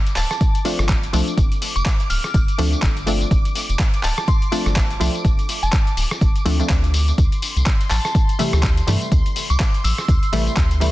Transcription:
Already playing: analog synth pad D6
0.07 closed hi-hat, tambourine
0.16 analog synth bass D1, synth bell A5, clap, open hi-hat, tambourine
0.31 synth bell A5, cross-stick, closed hi-hat, tambourine
0.41 kick, closed hi-hat, tambourine
0.55 closed hi-hat, tambourine
0.65 synth stab F3 A3 C4 D4, open hi-hat, tambourine
0.79 analog synth bass G1, cross-stick, closed hi-hat, tambourine
0.89 kick, clap, closed hi-hat, tambourine
1.03 closed hi-hat, tambourine
1.13 analog synth bass C2, synth stab F3 A3 C4 D4, open hi-hat, tambourine
1.28 closed hi-hat, tambourine
1.38 analog synth bass G1, kick, closed hi-hat, tambourine
1.52 closed hi-hat, tambourine
1.62 open hi-hat, tambourine
1.76 analog synth bass F1, synth bell D6, closed hi-hat, tambourine
1.86 kick, clap, closed hi-hat, tambourine
2.00 closed hi-hat, tambourine
2.10 analog synth bass D1, synth bell F6, open hi-hat, tambourine
2.24 cross-stick, closed hi-hat, tambourine
2.34 analog synth bass G1, kick, closed hi-hat, tambourine
2.48 closed hi-hat, tambourine
2.58 analog synth bass D2, synth stab F3 A3 C4 D4, open hi-hat, tambourine
2.73 closed hi-hat, tambourine
2.82 analog synth bass G1, kick, clap, closed hi-hat, tambourine
2.97 closed hi-hat, tambourine
3.06 synth stab F3 A3 C4 D4, open hi-hat, tambourine
3.21 closed hi-hat, tambourine
3.31 analog synth bass G1, kick, closed hi-hat, tambourine
3.45 closed hi-hat, tambourine
3.55 open hi-hat, tambourine
3.69 analog synth bass F1, closed hi-hat, tambourine
3.79 kick, clap, closed hi-hat, tambourine
3.94 closed hi-hat, tambourine
4.03 analog synth bass D1, synth bell A5, clap, open hi-hat, tambourine
4.18 synth bell A5, cross-stick, closed hi-hat, tambourine
4.28 synth bell C6, kick, closed hi-hat, tambourine
4.42 closed hi-hat, tambourine
4.52 synth stab F3 A3 C4 D4, synth bell A5, open hi-hat, tambourine
4.66 analog synth bass G1, cross-stick, closed hi-hat, tambourine
4.76 kick, clap, closed hi-hat, tambourine
4.91 closed hi-hat, tambourine
5.00 analog synth bass C2, synth stab F3 A3 C4 D4, open hi-hat, tambourine
5.15 closed hi-hat, tambourine
5.25 analog synth bass G1, kick, closed hi-hat, tambourine
5.39 closed hi-hat, tambourine
5.49 open hi-hat, tambourine
5.63 analog synth bass F1, synth bell A5, closed hi-hat, tambourine
5.73 kick, clap, closed hi-hat, tambourine
5.87 closed hi-hat, tambourine
5.97 analog synth bass D1, open hi-hat, tambourine
6.11 cross-stick, closed hi-hat, tambourine
6.21 analog synth bass G1, kick, closed hi-hat, tambourine
6.36 closed hi-hat, tambourine
6.45 analog synth bass D2, synth stab F3 A3 C4 D4, open hi-hat, tambourine
6.59 synth stab F3 A3 C4 D4, closed hi-hat, tambourine
6.69 analog synth bass D2, kick, clap, closed hi-hat, tambourine
6.84 closed hi-hat, tambourine
6.94 open hi-hat, tambourine
7.08 closed hi-hat, tambourine
7.18 analog synth bass D2, analog synth pad C6, kick, closed hi-hat, tambourine
7.32 closed hi-hat, tambourine
7.42 open hi-hat, tambourine
7.56 analog synth bass C2, closed hi-hat, tambourine
7.66 kick, clap, closed hi-hat, tambourine
7.81 closed hi-hat, tambourine
7.90 analog synth bass A1, synth bell A5, clap, open hi-hat, tambourine
8.05 synth bell A5, cross-stick, closed hi-hat, tambourine
8.15 kick, closed hi-hat, tambourine
8.29 closed hi-hat, tambourine
8.39 synth stab C3 E3 G3 A3, open hi-hat, tambourine
8.53 analog synth bass D2, cross-stick, closed hi-hat, tambourine
8.63 kick, clap, closed hi-hat, tambourine
8.77 closed hi-hat, tambourine
8.87 analog synth bass G2, synth stab C3 E3 G3 A3, open hi-hat, tambourine
9.02 closed hi-hat, tambourine
9.12 analog synth bass D2, kick, closed hi-hat, tambourine
9.26 closed hi-hat, tambourine
9.36 open hi-hat, tambourine
9.50 analog synth bass C2, synth bell D6, closed hi-hat, tambourine
9.60 kick, clap, closed hi-hat, tambourine
9.74 closed hi-hat, tambourine
9.84 analog synth bass A1, synth bell E6, open hi-hat, tambourine
9.98 cross-stick, closed hi-hat, tambourine
10.08 analog synth bass D2, kick, closed hi-hat, tambourine
10.23 closed hi-hat, tambourine
10.32 analog synth bass A1, synth stab C3 E3 G3 A3, open hi-hat, tambourine
10.47 closed hi-hat, tambourine
10.57 analog synth bass D2, kick, clap, closed hi-hat, tambourine
10.71 closed hi-hat, tambourine
10.80 synth stab C3 E3 G3 A3, open hi-hat, tambourine

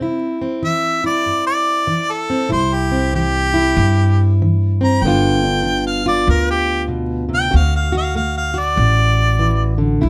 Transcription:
Already playing: steel-string acoustic guitar C4
0.01 steel-string acoustic guitar C3 E4
0.41 steel-string acoustic guitar C4
0.62 steel-string acoustic guitar E3, harmonica E5
1.04 steel-string acoustic guitar E4, harmonica D5
1.26 steel-string acoustic guitar G2
1.47 harmonica D5
1.87 steel-string acoustic guitar E3
2.11 harmonica A4
2.30 steel-string acoustic guitar C4
2.49 upright bass C2, steel-string acoustic guitar C3 E4, harmonica C5
2.74 harmonica G4
2.92 steel-string acoustic guitar C4
3.14 steel-string acoustic guitar E3, harmonica G4
3.54 steel-string acoustic guitar E4
3.77 upright bass G2, steel-string acoustic guitar G2
4.42 steel-string acoustic guitar E3
4.81 steel-string acoustic guitar C4, harmonica A#5
5.02 upright bass G1, steel-string acoustic guitar G2 D3 B3, harmonica G5
5.06 steel-string acoustic guitar D4 F4
5.44 steel-string acoustic guitar D4
5.66 steel-string acoustic guitar D3
5.87 harmonica F5
6.06 steel-string acoustic guitar F4, harmonica D5
6.27 upright bass D2, steel-string acoustic guitar G2, harmonica A#4
6.51 harmonica G4
6.88 steel-string acoustic guitar B2
7.29 steel-string acoustic guitar C3
7.34 harmonica G5
7.51 upright bass D2, steel-string acoustic guitar D3 F#4
7.56 harmonica F5
7.76 harmonica F5
7.92 steel-string acoustic guitar F#4
7.97 harmonica F5
8.15 steel-string acoustic guitar A3, harmonica F5
8.37 harmonica F5
8.54 steel-string acoustic guitar F#4
8.59 harmonica D5
8.76 upright bass A1, steel-string acoustic guitar A2
9.39 steel-string acoustic guitar E3
9.78 steel-string acoustic guitar D3
10.01 upright bass C2, steel-string acoustic guitar C3 E4

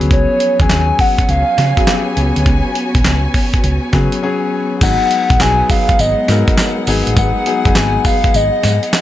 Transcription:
Already playing: grand piano F#3 B3 C#4 G#4
0.01 fingered electric bass D2, closed hi-hat
0.11 fingered electric bass C#2, string section B3 F#4 C#5 G#5, soft synth lead C#5, kick, closed hi-hat
0.40 closed hi-hat
0.60 fingered electric bass D#2, grand piano F#3 B3 C#4 G#4, soft synth lead G#5, kick, closed hi-hat
0.69 fingered electric bass D#2, snare, clap, closed hi-hat
0.99 soft synth lead F#5, kick, open hi-hat
1.18 kick, closed hi-hat
1.29 fingered electric bass C#2, soft synth lead F5, closed hi-hat
1.58 fingered electric bass C#3, snare, closed hi-hat
1.77 grand piano F#3 B3 C#4 G#4, kick, closed hi-hat
1.87 grand piano F#3 B3 C#4 G4, snare, clap, closed hi-hat
1.95 grand piano G#4
2.17 fingered electric bass C#2, closed hi-hat
2.36 fingered electric bass D2, closed hi-hat
2.46 fingered electric bass C#2, kick, closed hi-hat
2.75 closed hi-hat
2.95 fingered electric bass B1, kick, closed hi-hat
3.04 fingered electric bass C#2, snare, clap, closed hi-hat
3.34 kick, open hi-hat
3.54 kick, closed hi-hat
3.64 fingered electric bass C#2, closed hi-hat
3.93 fingered electric bass C#3, grand piano F#3 B3 C#4 G#4, kick, snare, closed hi-hat
4.12 closed hi-hat
4.22 grand piano F#3 B3 C#4 G#4
4.81 fingered electric bass G#1, grand piano F#3 B3 D#4 G#4, string section G#3 B3 G#4 F#5, soft synth lead F#5, kick, closed hi-hat, crash, tambourine
5.11 closed hi-hat
5.30 fingered electric bass B1, kick, closed hi-hat
5.40 fingered electric bass B1, grand piano F#3 B3 D#4 G#4, soft synth lead G#5, snare, clap, closed hi-hat, tambourine
5.70 soft synth lead F5, kick, open hi-hat, tambourine
5.89 kick, closed hi-hat
5.99 fingered electric bass G#1, soft synth lead D#5, closed hi-hat, tambourine
6.28 fingered electric bass G#2, grand piano F#3 B3 D#4 A#4, snare, closed hi-hat, tambourine
6.48 kick, closed hi-hat
6.58 snare, clap, closed hi-hat, tambourine
6.87 fingered electric bass G#1, grand piano F#3 B3 D#4 G#4, open hi-hat, tambourine
7.07 fingered electric bass A1, closed hi-hat
7.17 fingered electric bass G#1, soft synth lead F#5, kick, closed hi-hat, tambourine
7.46 grand piano F#3 B3 D#4 G#4, closed hi-hat
7.65 fingered electric bass F#1, grand piano F#3 B3 D#4 G#4, kick, closed hi-hat
7.75 fingered electric bass G#1, soft synth lead G#5, snare, clap, closed hi-hat, tambourine
8.05 soft synth lead F5, kick, open hi-hat, tambourine
8.24 kick, closed hi-hat
8.34 fingered electric bass G#1, soft synth lead D#5, closed hi-hat, tambourine
8.63 fingered electric bass G#2, snare, closed hi-hat, tambourine
8.83 closed hi-hat
8.93 snare, clap, closed hi-hat, tambourine

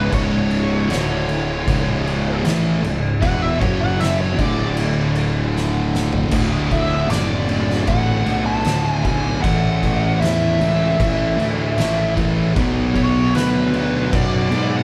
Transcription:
Already playing: distorted electric guitar C#2 G#2 C#3, lead electric guitar B4
0.12 fingered electric bass C#1, distorted electric guitar C#2 G#2 C#3, lead electric guitar C#5, kick, crash
0.51 crash
0.89 fingered electric bass D1, distorted electric guitar D2 A2 D3, snare, crash
1.29 crash
1.67 fingered electric bass C#1, distorted electric guitar C#2 G#2 C#3, kick, crash
2.07 crash
2.45 fingered electric bass A1, distorted electric guitar A2 E3 A3, snare, crash
2.83 fingered electric bass C#1, distorted electric guitar C#2 G#2, crash
3.21 fingered electric bass E1, distorted electric guitar E2 B2 E3, lead electric guitar F#5, kick, crash
3.42 lead electric guitar E5
3.60 fingered electric bass F#1, distorted electric guitar F#2 C#3 F#3, lead electric guitar C#5, kick, crash
3.81 lead electric guitar F#5
4.00 lead electric guitar E5, snare, crash
4.21 lead electric guitar C#5
4.38 fingered electric bass D1, distorted electric guitar D2 A2 D3, lead electric guitar D5, kick, crash
4.77 crash
5.15 crash
5.57 snare
5.95 snare
6.13 floor tom
6.31 fingered electric bass D1, distorted electric guitar D2 A2 D3, kick, crash
6.69 distorted electric guitar D2 A2 D3, lead electric guitar E5, kick, crash
7.10 fingered electric bass F#1, distorted electric guitar D2 A2 D3, lead electric guitar D5, snare, crash
7.47 distorted electric guitar D2 A2 D3, crash
7.70 snare
7.87 fingered electric bass A1, distorted electric guitar D2 A2 D3, lead electric guitar F#5, kick, crash
8.26 fingered electric bass B1, distorted electric guitar D2 A2 D3, crash
8.46 lead electric guitar A5
8.64 distorted electric guitar D2 A2 D3, fingered electric bass D2, snare, crash
8.89 lead electric guitar G#5
9.04 fingered electric bass B1, distorted electric guitar D2 A2 D3, lead electric guitar G#5, kick, crash
9.42 fingered electric bass A1, distorted electric guitar A2 E3 A3, lead electric guitar F#5, kick, crash
9.82 distorted electric guitar A2 E3 A3, kick, crash
10.20 fingered electric bass E2, distorted electric guitar A2 E3 A3, lead electric guitar E5, crash
10.24 snare
10.59 fingered electric bass C#2, distorted electric guitar A2 E3 A3, crash
10.99 fingered electric bass A1, distorted electric guitar A2 E3 A3, kick, crash
11.38 fingered electric bass D2, distorted electric guitar A2 E3 A3, crash
11.76 fingered electric bass A1, distorted electric guitar A2 E3 A3, snare, crash
12.16 distorted electric guitar A2 E3 A3, kick, crash
12.55 fingered electric bass B1, distorted electric guitar B2 F#3 B3, kick, crash
12.93 distorted electric guitar B2 F#3 B3, lead electric guitar C#5, kick, crash
13.34 fingered electric bass D2, distorted electric guitar B2 F#3 B3, lead electric guitar B4, snare, crash
13.74 distorted electric guitar B2 F#3 B3, crash
14.12 fingered electric bass F#2, distorted electric guitar B2 F#3 B3, lead electric guitar D5, kick, crash
14.52 fingered electric bass G#2, distorted electric guitar B2 F#3 B3, crash
14.76 lead electric guitar F#5

